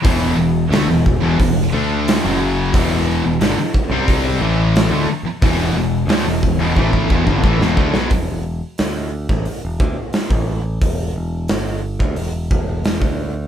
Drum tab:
HH |o---o---o---o---|o---o---o---o---|o---o-----------|o---o---o---o---|
SD |----oo------o---|--o-oo------o---|--o-oo-------o-o|----o--o----o---|
BD |o-----o-o-------|o-----o-o-------|o-----o-ooooo-o-|o------o--o--o--|

HH |o---o---o---o---|
SD |----o-------o---|
BD |o------o--o--o--|